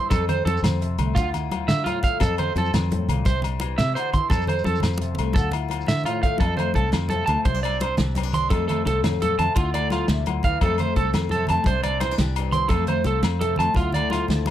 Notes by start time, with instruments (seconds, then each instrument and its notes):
0.03 low conga
0.10 steel-string acoustic guitar F2 A4, fingered electric bass F2, clean electric guitar A4, kick, closed hi-hat, high conga, low agogo, shekere
0.29 steel-string acoustic guitar C4, clean electric guitar C5, closed hi-hat, low conga, low agogo
0.45 fingered electric bass F2, steel-string acoustic guitar F3, clean electric guitar A4, closed hi-hat, high conga
0.57 shekere
0.63 fingered electric bass F2, snare, closed hi-hat, low conga, low agogo, shekere
0.81 steel-string acoustic guitar C3, closed hi-hat, low conga
0.91 low conga
0.98 fingered electric bass C2, steel-string acoustic guitar A3, closed hi-hat, low conga, low agogo
1.15 fingered electric bass D2, steel-string acoustic guitar D3 F4, clean electric guitar F4, kick, closed hi-hat, high conga, low conga, shekere
1.27 low conga
1.34 steel-string acoustic guitar E4, closed hi-hat, low conga, low agogo, shekere
1.51 steel-string acoustic guitar F3, closed hi-hat, high conga, low agogo
1.68 fingered electric bass D3, clean electric guitar E5, snare, closed hi-hat, low conga, shekere
1.84 steel-string acoustic guitar A2, clean electric guitar F4, closed hi-hat, high conga, low agogo, shekere
2.03 steel-string acoustic guitar A3, clean electric guitar F5, kick, closed hi-hat, low conga, shekere
2.12 low conga
2.20 fingered electric bass F2, steel-string acoustic guitar F2 A4, clean electric guitar A4, kick, closed hi-hat, high conga, low agogo, shekere
2.38 steel-string acoustic guitar C4, clean electric guitar C5, closed hi-hat, low conga, low agogo
2.56 fingered electric bass F2, steel-string acoustic guitar F3, clean electric guitar A4, closed hi-hat, high conga
2.65 shekere
2.74 fingered electric bass F2, steel-string acoustic guitar G2, snare, closed hi-hat, low conga, low agogo, shekere
2.91 steel-string acoustic guitar A2, closed hi-hat, high conga, low conga
3.08 fingered electric bass C2, steel-string acoustic guitar A#2, closed hi-hat, low conga, low agogo
3.25 fingered electric bass C2, steel-string acoustic guitar C3 G4, clean electric guitar C5, kick, closed hi-hat, high conga, low conga, shekere
3.35 low conga
3.42 steel-string acoustic guitar D4, closed hi-hat, low conga, low agogo, shekere
3.60 steel-string acoustic guitar E3, closed hi-hat, high conga, low agogo
3.78 fingered electric bass C3, steel-string acoustic guitar C3, clean electric guitar E5, snare, closed hi-hat, low conga, shekere
3.95 steel-string acoustic guitar D3, clean electric guitar C5, closed hi-hat, low agogo, shekere
4.13 steel-string acoustic guitar E3, clean electric guitar C6, kick, closed hi-hat, low conga, shekere
4.21 low conga
4.30 fingered electric bass F2, steel-string acoustic guitar F2 A4, clean electric guitar A4, kick, closed hi-hat, high conga, low conga, low agogo, shekere
4.41 low conga, shekere
4.47 steel-string acoustic guitar C4, clean electric guitar C5, closed hi-hat, low conga, low agogo
4.59 shekere
4.64 fingered electric bass F2, steel-string acoustic guitar F3, clean electric guitar A4, closed hi-hat, high conga, low conga
4.74 low conga, shekere
4.80 fingered electric bass F2, snare, closed hi-hat, low conga, low agogo, shekere
4.93 shekere
4.98 steel-string acoustic guitar C3, closed hi-hat, high conga
5.03 shekere
5.15 closed hi-hat, low conga
5.19 fingered electric bass C2, steel-string acoustic guitar A3, low agogo
5.33 fingered electric bass D2, steel-string acoustic guitar D3 F4, clean electric guitar A4, kick, closed hi-hat, high conga, shekere
5.44 low conga
5.52 steel-string acoustic guitar E4, closed hi-hat, low conga, low agogo
5.69 steel-string acoustic guitar F3, closed hi-hat, high conga, low agogo
5.81 shekere
5.86 fingered electric bass D3, clean electric guitar E5, snare, closed hi-hat, high conga, shekere
5.98 shekere
6.04 steel-string acoustic guitar A2, clean electric guitar F4, closed hi-hat, low conga, low agogo
6.23 steel-string acoustic guitar A3, clean electric guitar F5, kick, closed hi-hat, low conga
6.38 steel-string acoustic guitar F2 C4, fingered electric bass F2, clean electric guitar A4, kick, closed hi-hat, high conga, low agogo
6.48 low conga
6.57 steel-string acoustic guitar A3, clean electric guitar C5, closed hi-hat, low conga, low agogo
6.66 low conga
6.74 fingered electric bass C2, steel-string acoustic guitar F3 C4, clean electric guitar A4, kick, closed hi-hat, high conga
6.92 fingered electric bass F2, snare, closed hi-hat, low conga, low agogo
7.09 steel-string acoustic guitar C3 C4, clean electric guitar A4, closed hi-hat, high conga
7.26 fingered electric bass D2, steel-string acoustic guitar A3, clean electric guitar A5, closed hi-hat, low conga, low agogo
7.38 low conga
7.45 fingered electric bass C2, steel-string acoustic guitar C3 C4, clean electric guitar C5, kick, closed hi-hat, high conga
7.54 steel-string acoustic guitar D4
7.63 steel-string acoustic guitar C4, clean electric guitar D5, closed hi-hat, low agogo
7.80 steel-string acoustic guitar D4, clean electric guitar C5, closed hi-hat, high conga, low agogo
7.97 fingered electric bass C2, steel-string acoustic guitar G4, snare, closed hi-hat, low conga
8.07 low conga
8.15 steel-string acoustic guitar G2 C4, closed hi-hat, high conga, low agogo
8.23 steel-string acoustic guitar D4
8.33 steel-string acoustic guitar C4, clean electric guitar C6, closed hi-hat, low conga
8.50 steel-string acoustic guitar F2 F3 A3 C4 A4, fingered electric bass F2, clean electric guitar A4, kick, closed hi-hat, high conga, low agogo
8.60 low conga
8.68 steel-string acoustic guitar A3, clean electric guitar A4, closed hi-hat, low conga, low agogo
8.85 fingered electric bass C2, steel-string acoustic guitar F3 C4, clean electric guitar A4, closed hi-hat, high conga
9.03 fingered electric bass F2, steel-string acoustic guitar A2, snare, closed hi-hat, low conga, low agogo
9.20 steel-string acoustic guitar A#2, clean electric guitar A4, closed hi-hat, high conga
9.39 fingered electric bass F2, steel-string acoustic guitar C3, clean electric guitar A5, closed hi-hat, low conga, low agogo
9.49 low conga
9.55 fingered electric bass D2, steel-string acoustic guitar D3 E4, clean electric guitar F4, kick, closed hi-hat, high conga
9.74 steel-string acoustic guitar A3, clean electric guitar D5, closed hi-hat, low conga, low agogo
9.90 steel-string acoustic guitar F3 E4, clean electric guitar F4, snare, closed hi-hat, high conga, low agogo
10.08 fingered electric bass D2, steel-string acoustic guitar C3, snare, closed hi-hat, low conga
10.18 low conga
10.26 steel-string acoustic guitar D3, closed hi-hat, high conga, low agogo
10.43 steel-string acoustic guitar E3, clean electric guitar F5, kick, closed hi-hat, low conga
10.61 fingered electric bass F2, steel-string acoustic guitar F2 F3 A3 C4, clean electric guitar A4, kick, closed hi-hat, high conga, low agogo
10.65 steel-string acoustic guitar A4
10.71 low conga
10.78 steel-string acoustic guitar A3, clean electric guitar C5, closed hi-hat, low conga, low agogo
10.87 low conga
10.96 fingered electric bass C2, steel-string acoustic guitar C4, clean electric guitar A4, kick, closed hi-hat, high conga
11.13 fingered electric bass F2, steel-string acoustic guitar A4, snare, closed hi-hat, low conga, low agogo
11.29 clean electric guitar A4, closed hi-hat, high conga
11.34 steel-string acoustic guitar C3 C4
11.47 fingered electric bass F2, clean electric guitar A5, closed hi-hat, low conga, low agogo
11.52 steel-string acoustic guitar A3
11.56 low conga
11.64 fingered electric bass C2, clean electric guitar C5, kick, closed hi-hat, high conga
11.68 steel-string acoustic guitar C3 D4
11.83 steel-string acoustic guitar C4, clean electric guitar D5, closed hi-hat, low conga, low agogo
12.00 steel-string acoustic guitar E3 C4, clean electric guitar C5, snare, closed hi-hat, high conga, low agogo
12.11 steel-string acoustic guitar D4
12.18 fingered electric bass C2, steel-string acoustic guitar G4, snare, closed hi-hat, low conga
12.36 steel-string acoustic guitar G2 D4, closed hi-hat, low agogo
12.52 steel-string acoustic guitar C4, clean electric guitar C6, closed hi-hat, low conga
12.69 steel-string acoustic guitar F2 F3 A3 C4, fingered electric bass F2, clean electric guitar A4, kick, closed hi-hat, high conga, low conga, low agogo
12.73 steel-string acoustic guitar A4
12.87 steel-string acoustic guitar A3, clean electric guitar C5, closed hi-hat, low conga, low agogo
12.97 low conga
13.04 fingered electric bass C2, steel-string acoustic guitar F3 C4, clean electric guitar A4, closed hi-hat, high conga, low conga
13.23 fingered electric bass F2, snare, closed hi-hat, low conga, low agogo
13.41 steel-string acoustic guitar C3 C4, clean electric guitar A4, closed hi-hat, high conga, low conga
13.49 low conga
13.56 fingered electric bass F2, steel-string acoustic guitar A3, clean electric guitar A5, closed hi-hat, low conga, low agogo
13.74 fingered electric bass D2, steel-string acoustic guitar D3 E4, clean electric guitar F4, kick, closed hi-hat, high conga
13.92 steel-string acoustic guitar A3, clean electric guitar D5, closed hi-hat, low conga, low agogo
14.10 steel-string acoustic guitar F3 E4, clean electric guitar F4, snare, closed hi-hat, high conga, low agogo
14.19 low conga
14.28 fingered electric bass D2, steel-string acoustic guitar F4, snare, closed hi-hat, low conga
14.46 steel-string acoustic guitar A2 E4, high conga, low conga, low agogo